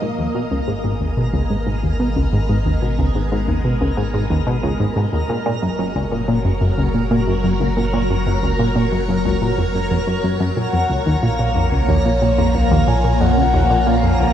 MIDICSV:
0, 0, Header, 1, 6, 480
1, 0, Start_track
1, 0, Tempo, 659341
1, 15, Time_signature, 4, 2, 24, 8
1, 10433, End_track
2, 0, Start_track
2, 0, Title_t, "Soft synth lead"
2, 0, Program_c, 0, 80
2, 7695, Note_on_c, 0, 78, 107
2, 8175, Note_on_c, 0, 77, 112
2, 8186, Note_off_c, 0, 78, 0
2, 8657, Note_on_c, 0, 73, 104
2, 8668, Note_off_c, 0, 77, 0
2, 9137, Note_on_c, 0, 77, 112
2, 9148, Note_off_c, 0, 73, 0
2, 9376, Note_on_c, 0, 80, 112
2, 9387, Note_off_c, 0, 77, 0
2, 9616, Note_on_c, 0, 78, 117
2, 9627, Note_off_c, 0, 80, 0
2, 10096, Note_on_c, 0, 77, 107
2, 10107, Note_off_c, 0, 78, 0
2, 10433, Note_off_c, 0, 77, 0
2, 10433, End_track
3, 0, Start_track
3, 0, Title_t, "Synth texture"
3, 0, Program_c, 1, 99
3, 16, Note_on_c, 1, 70, 76
3, 10433, Note_off_c, 1, 70, 0
3, 10433, End_track
4, 0, Start_track
4, 0, Title_t, "String machine"
4, 0, Program_c, 2, 50
4, 0, Note_on_c, 2, 75, 86
4, 0, Note_on_c, 2, 77, 75
4, 16, Note_on_c, 2, 56, 74
4, 294, Note_on_c, 2, 68, 73
4, 495, Note_on_c, 2, 59, 86
4, 1550, Note_off_c, 2, 77, 0
4, 3855, Note_off_c, 2, 56, 0
4, 3856, Note_off_c, 2, 59, 0
4, 3857, Note_on_c, 2, 54, 75
4, 3979, Note_on_c, 2, 73, 79
4, 4150, Note_on_c, 2, 66, 66
4, 4418, Note_on_c, 2, 70, 72
4, 4448, Note_off_c, 2, 75, 0
4, 5216, Note_off_c, 2, 68, 0
4, 7695, Note_off_c, 2, 66, 0
4, 7695, Note_on_c, 2, 46, 85
4, 7696, Note_off_c, 2, 54, 0
4, 7979, Note_on_c, 2, 58, 86
4, 8322, Note_on_c, 2, 53, 82
4, 8738, Note_off_c, 2, 70, 0
4, 10433, Note_off_c, 2, 46, 0
4, 10433, Note_off_c, 2, 53, 0
4, 10433, Note_off_c, 2, 58, 0
4, 10433, Note_off_c, 2, 73, 0
4, 10433, End_track
5, 0, Start_track
5, 0, Title_t, "Synth arpeggio sound"
5, 0, Program_c, 3, 84
5, 12, Note_on_c, 3, 44, 78
5, 85, Note_off_c, 3, 44, 0
5, 133, Note_on_c, 3, 39, 76
5, 205, Note_off_c, 3, 39, 0
5, 252, Note_on_c, 3, 47, 75
5, 325, Note_off_c, 3, 47, 0
5, 372, Note_on_c, 3, 37, 98
5, 444, Note_off_c, 3, 37, 0
5, 493, Note_on_c, 3, 44, 83
5, 536, Note_off_c, 3, 44, 0
5, 613, Note_on_c, 3, 44, 71
5, 685, Note_off_c, 3, 44, 0
5, 733, Note_on_c, 3, 39, 72
5, 805, Note_off_c, 3, 39, 0
5, 852, Note_on_c, 3, 47, 75
5, 924, Note_off_c, 3, 47, 0
5, 972, Note_on_c, 3, 37, 91
5, 1045, Note_off_c, 3, 37, 0
5, 1094, Note_on_c, 3, 44, 73
5, 1137, Note_off_c, 3, 44, 0
5, 1214, Note_on_c, 3, 44, 75
5, 1285, Note_off_c, 3, 44, 0
5, 1335, Note_on_c, 3, 39, 76
5, 1406, Note_off_c, 3, 39, 0
5, 1454, Note_on_c, 3, 47, 85
5, 1526, Note_off_c, 3, 47, 0
5, 1575, Note_on_c, 3, 37, 104
5, 1646, Note_off_c, 3, 37, 0
5, 1695, Note_on_c, 3, 44, 78
5, 1738, Note_off_c, 3, 44, 0
5, 1816, Note_on_c, 3, 44, 73
5, 1887, Note_off_c, 3, 44, 0
5, 1935, Note_on_c, 3, 39, 75
5, 2006, Note_off_c, 3, 39, 0
5, 2054, Note_on_c, 3, 47, 75
5, 2126, Note_off_c, 3, 47, 0
5, 2175, Note_on_c, 3, 37, 101
5, 2246, Note_off_c, 3, 37, 0
5, 2295, Note_on_c, 3, 44, 73
5, 2338, Note_off_c, 3, 44, 0
5, 2415, Note_on_c, 3, 44, 78
5, 2486, Note_off_c, 3, 44, 0
5, 2534, Note_on_c, 3, 39, 74
5, 2606, Note_off_c, 3, 39, 0
5, 2654, Note_on_c, 3, 47, 73
5, 2726, Note_off_c, 3, 47, 0
5, 2773, Note_on_c, 3, 37, 97
5, 2845, Note_off_c, 3, 37, 0
5, 2893, Note_on_c, 3, 44, 77
5, 2937, Note_off_c, 3, 44, 0
5, 3013, Note_on_c, 3, 44, 79
5, 3085, Note_off_c, 3, 44, 0
5, 3133, Note_on_c, 3, 39, 71
5, 3205, Note_off_c, 3, 39, 0
5, 3252, Note_on_c, 3, 47, 77
5, 3325, Note_off_c, 3, 47, 0
5, 3372, Note_on_c, 3, 37, 106
5, 3445, Note_off_c, 3, 37, 0
5, 3493, Note_on_c, 3, 44, 77
5, 3536, Note_off_c, 3, 44, 0
5, 3611, Note_on_c, 3, 44, 74
5, 3684, Note_off_c, 3, 44, 0
5, 3733, Note_on_c, 3, 39, 73
5, 3805, Note_off_c, 3, 39, 0
5, 3853, Note_on_c, 3, 46, 80
5, 3925, Note_off_c, 3, 46, 0
5, 3974, Note_on_c, 3, 46, 97
5, 4046, Note_off_c, 3, 46, 0
5, 4095, Note_on_c, 3, 42, 75
5, 4137, Note_off_c, 3, 42, 0
5, 4214, Note_on_c, 3, 42, 76
5, 4286, Note_off_c, 3, 42, 0
5, 4335, Note_on_c, 3, 37, 80
5, 4406, Note_off_c, 3, 37, 0
5, 4454, Note_on_c, 3, 46, 75
5, 4525, Note_off_c, 3, 46, 0
5, 4573, Note_on_c, 3, 46, 91
5, 4645, Note_off_c, 3, 46, 0
5, 4694, Note_on_c, 3, 42, 74
5, 4737, Note_off_c, 3, 42, 0
5, 4814, Note_on_c, 3, 42, 79
5, 4886, Note_off_c, 3, 42, 0
5, 4935, Note_on_c, 3, 37, 78
5, 5006, Note_off_c, 3, 37, 0
5, 5055, Note_on_c, 3, 46, 70
5, 5126, Note_off_c, 3, 46, 0
5, 5175, Note_on_c, 3, 46, 102
5, 5246, Note_off_c, 3, 46, 0
5, 5296, Note_on_c, 3, 42, 83
5, 5338, Note_off_c, 3, 42, 0
5, 5415, Note_on_c, 3, 42, 76
5, 5486, Note_off_c, 3, 42, 0
5, 5535, Note_on_c, 3, 37, 77
5, 5606, Note_off_c, 3, 37, 0
5, 5655, Note_on_c, 3, 46, 77
5, 5726, Note_off_c, 3, 46, 0
5, 5776, Note_on_c, 3, 46, 92
5, 5846, Note_off_c, 3, 46, 0
5, 5894, Note_on_c, 3, 42, 75
5, 5937, Note_off_c, 3, 42, 0
5, 6016, Note_on_c, 3, 42, 78
5, 6087, Note_off_c, 3, 42, 0
5, 6136, Note_on_c, 3, 37, 76
5, 6206, Note_off_c, 3, 37, 0
5, 6254, Note_on_c, 3, 46, 83
5, 6326, Note_off_c, 3, 46, 0
5, 6374, Note_on_c, 3, 46, 96
5, 6446, Note_off_c, 3, 46, 0
5, 6494, Note_on_c, 3, 42, 69
5, 6537, Note_off_c, 3, 42, 0
5, 6614, Note_on_c, 3, 42, 74
5, 6686, Note_off_c, 3, 42, 0
5, 6735, Note_on_c, 3, 37, 78
5, 6806, Note_off_c, 3, 37, 0
5, 6854, Note_on_c, 3, 46, 79
5, 6926, Note_off_c, 3, 46, 0
5, 6973, Note_on_c, 3, 41, 70
5, 7017, Note_off_c, 3, 41, 0
5, 7093, Note_on_c, 3, 42, 73
5, 7165, Note_off_c, 3, 42, 0
5, 7214, Note_on_c, 3, 41, 82
5, 7257, Note_off_c, 3, 41, 0
5, 7333, Note_on_c, 3, 42, 74
5, 7405, Note_off_c, 3, 42, 0
5, 7453, Note_on_c, 3, 42, 78
5, 7561, Note_off_c, 3, 42, 0
5, 7572, Note_on_c, 3, 42, 98
5, 7645, Note_off_c, 3, 42, 0
5, 7692, Note_on_c, 3, 46, 77
5, 7765, Note_off_c, 3, 46, 0
5, 7813, Note_on_c, 3, 41, 74
5, 7885, Note_off_c, 3, 41, 0
5, 7932, Note_on_c, 3, 37, 75
5, 8005, Note_off_c, 3, 37, 0
5, 8053, Note_on_c, 3, 39, 101
5, 8125, Note_off_c, 3, 39, 0
5, 8174, Note_on_c, 3, 46, 85
5, 8217, Note_off_c, 3, 46, 0
5, 8294, Note_on_c, 3, 46, 75
5, 8365, Note_off_c, 3, 46, 0
5, 8413, Note_on_c, 3, 41, 72
5, 8485, Note_off_c, 3, 41, 0
5, 8533, Note_on_c, 3, 37, 74
5, 8605, Note_off_c, 3, 37, 0
5, 8652, Note_on_c, 3, 39, 92
5, 8725, Note_off_c, 3, 39, 0
5, 8775, Note_on_c, 3, 46, 76
5, 8817, Note_off_c, 3, 46, 0
5, 8894, Note_on_c, 3, 46, 73
5, 8966, Note_off_c, 3, 46, 0
5, 9013, Note_on_c, 3, 41, 78
5, 9085, Note_off_c, 3, 41, 0
5, 9135, Note_on_c, 3, 37, 83
5, 9206, Note_off_c, 3, 37, 0
5, 9255, Note_on_c, 3, 39, 106
5, 9326, Note_off_c, 3, 39, 0
5, 9374, Note_on_c, 3, 46, 79
5, 9417, Note_off_c, 3, 46, 0
5, 9495, Note_on_c, 3, 46, 72
5, 9566, Note_off_c, 3, 46, 0
5, 9613, Note_on_c, 3, 41, 81
5, 9685, Note_off_c, 3, 41, 0
5, 9734, Note_on_c, 3, 37, 80
5, 9806, Note_off_c, 3, 37, 0
5, 9855, Note_on_c, 3, 39, 100
5, 9926, Note_off_c, 3, 39, 0
5, 9975, Note_on_c, 3, 46, 76
5, 10018, Note_off_c, 3, 46, 0
5, 10095, Note_on_c, 3, 46, 81
5, 10166, Note_off_c, 3, 46, 0
5, 10215, Note_on_c, 3, 41, 73
5, 10286, Note_off_c, 3, 41, 0
5, 10336, Note_on_c, 3, 37, 74
5, 10406, Note_off_c, 3, 37, 0
5, 10433, End_track
6, 0, Start_track
6, 0, Title_t, "Analog synth bass"
6, 0, Program_c, 4, 38
6, 14, Note_on_c, 4, 32, 83
6, 3830, Note_off_c, 4, 32, 0
6, 3854, Note_on_c, 4, 30, 84
6, 7670, Note_off_c, 4, 30, 0
6, 7693, Note_on_c, 4, 34, 91
6, 10433, Note_off_c, 4, 34, 0
6, 10433, End_track
0, 0, End_of_file